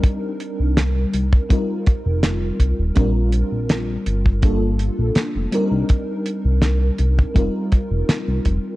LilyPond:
<<
  \new Staff \with { instrumentName = "FM electric piano" } { \time 4/4 \key c \dorian \tempo 4 = 82 <g c' d' ees' bes'>2 <g c' ees' f' bes'>2 | <g c' d' f' bes'>2 <g bes d' f' a'>4. <g c' d' ees' bes'>8~ | <g c' d' ees' bes'>2 <g c' ees' f' bes'>2 | }
  \new Staff \with { instrumentName = "Analog synth bass" } { \clef bass \time 4/4 \key c \dorian r8. c,8. c,16 r4 f,,8. c,16 ees,,16 | bes,,8. bes,,8. g,,4~ g,,16 bes,,16 r16 f,,16 r16 c,16 | r8. c,8. c,16 r16 f,,16 r8 f,,16 r16 c,16 f,,16 r16 | }
  \new DrumStaff \with { instrumentName = "Drums" } \drummode { \time 4/4 <hh bd>8 hh8 <hh sn>8 hh16 bd16 <hh bd>8 <hh bd>8 <hh sn>8 <hh bd>8 | <hh bd>8 hh8 <hh sn>8 hh16 bd16 <hh bd>8 hh8 <hh sn>8 hh8 | <hh bd>8 hh8 <hh sn>8 hh16 bd16 <hh bd>8 <hh bd>8 <hh sn>8 <hh bd>8 | }
>>